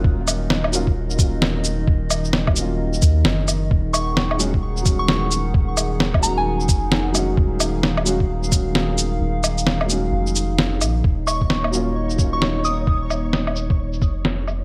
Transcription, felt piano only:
X:1
M:4/4
L:1/8
Q:"Swing 16ths" 1/4=131
K:Ebm
V:1 name="Felt piano"
[G,B,DF]3 [G,B,DF] z [G,B,DF]3- | [G,B,DF]3 [G,B,DF]2 z3 | z3 [G,A,DG] z [G,A,DG]3- | [G,A,DG]3 [G,A,DG]2 z2 [G,A,DG]- |
[G,A,DG]3 [G,A,DG] z [G,A,DG]3- | [G,A,DG]3 [G,A,DG]2 z3 | z3 [G,B,DF] z [G,B,DF]3- | [G,B,DF] z6 z |]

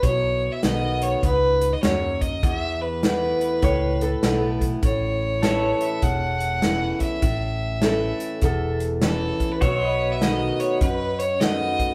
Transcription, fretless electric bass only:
X:1
M:4/4
L:1/8
Q:"Swing" 1/4=100
K:A
V:1 name="Fretless electric bass" clef=bass
B,,,2 B,,,2 C,,2 ^D,,2 | E,,4 C,,2 B,,,2 | A,,,4 E,,,4 | A,,,4 E,,,4 |
B,,,4 F,,4 |]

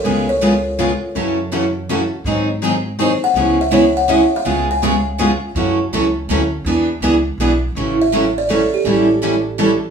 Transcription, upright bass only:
X:1
M:3/4
L:1/8
Q:"Swing" 1/4=164
K:A
V:1 name="Upright bass" clef=bass
C,,6 | F,,6 | G,,6 | C,,6 |
C,,6 | F,,2 C,,2 D,,2 | E,,2 C,,2 B,,,2 | A,,,6 |
A,,,6 |]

